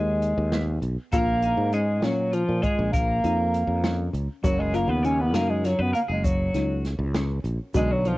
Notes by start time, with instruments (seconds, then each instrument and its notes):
Already playing: fretless electric bass D#2, bass clarinet G#3, synth arpeggio sound D#4, clean electric guitar G#4
0.22 closed hi-hat
0.37 fretless electric bass D#2
0.52 synth arpeggio sound B3, snare, closed hi-hat
0.82 fretless electric bass B1, closed hi-hat
1.12 fretless electric bass A#1, bass clarinet A#3, synth arpeggio sound F4, clean electric guitar A#4, kick, closed hi-hat, shaker
1.43 synth arpeggio sound D#4, closed hi-hat
1.57 fretless electric bass G#2
1.73 bass clarinet G#3, synth arpeggio sound C#4, clean electric guitar G#4, closed hi-hat, shaker
2.02 fretless electric bass A#2, bass clarinet F#3, synth arpeggio sound C#4, clean electric guitar F#4, snare, closed hi-hat
2.32 bass clarinet F3, clean electric guitar F4, synth arpeggio sound F4, closed hi-hat
2.49 fretless electric bass A#2
2.62 bass clarinet G#3, synth arpeggio sound F4, clean electric guitar G#4, kick, closed hi-hat
2.79 fretless electric bass A#1
2.92 bass clarinet A#3, clean electric guitar A#4, kick, closed hi-hat, shaker
3.24 fretless electric bass F2, synth arpeggio sound D#4, closed hi-hat, shaker
3.54 closed hi-hat
3.67 fretless electric bass F2
3.84 synth arpeggio sound C#4, snare, closed hi-hat
4.13 fretless electric bass C#2, closed hi-hat
4.44 fretless electric bass F#1, grand piano C#3 F#3 A#3 C#4, bass clarinet F#3, synth arpeggio sound F#4, clean electric guitar F#4, kick, closed hi-hat, shaker
4.59 bass clarinet G#3, clean electric guitar G#4
4.74 bass clarinet A#3, synth arpeggio sound F4, clean electric guitar A#4, closed hi-hat
4.88 fretless electric bass D#2, bass clarinet B3, clean electric guitar B4
5.03 bass clarinet C#4, synth arpeggio sound D#4, clean electric guitar C#5, closed hi-hat, shaker
5.19 bass clarinet B3, clean electric guitar B4
5.33 fretless electric bass F#2, bass clarinet A#3, synth arpeggio sound D#4, clean electric guitar A#4, snare, closed hi-hat
5.48 bass clarinet G#3, clean electric guitar G#4
5.64 bass clarinet F#3, synth arpeggio sound F4, clean electric guitar F#4, snare, closed hi-hat
5.79 fretless electric bass F#2, bass clarinet B3, clean electric guitar B4
5.93 bass clarinet A#3, clean electric guitar A#4, synth arpeggio sound F5, closed hi-hat
6.08 fretless electric bass F#1, bass clarinet G#3, clean electric guitar G#4
6.24 bass clarinet F#3, clean electric guitar F#4, kick, closed hi-hat, shaker
6.54 fretless electric bass C#2, synth arpeggio sound D#4, snare, closed hi-hat, shaker
6.85 snare, closed hi-hat
6.99 fretless electric bass C#2
7.15 synth arpeggio sound C#4, snare, closed hi-hat
7.44 fretless electric bass A#1, closed hi-hat
7.74 fretless electric bass B1, grand piano D3 F#3 B3 D4, bass clarinet G#3, synth arpeggio sound F#4, clean electric guitar G#4, kick, closed hi-hat, shaker
7.91 bass clarinet F#3, clean electric guitar F#4
8.05 bass clarinet F3, synth arpeggio sound F4, clean electric guitar F4, closed hi-hat